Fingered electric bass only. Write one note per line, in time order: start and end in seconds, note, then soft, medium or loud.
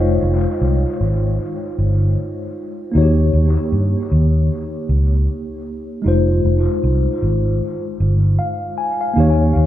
0.00 0.21 F1 loud
0.22 0.45 F1 medium
0.61 0.83 C2 medium
1.01 1.37 G#1 loud
1.78 2.15 G1 medium
2.95 3.32 D#2 loud
3.33 3.56 D#2 medium
3.72 3.94 G2 medium
4.12 4.48 D#2 medium
4.89 5.26 C#2 medium
6.05 6.43 F1 loud
6.45 6.67 F1 medium
6.84 7.06 C2 medium
7.22 7.59 G#1 medium
8.00 8.37 G1 medium
9.17 9.54 D#2 loud
9.56 9.66 D#2 medium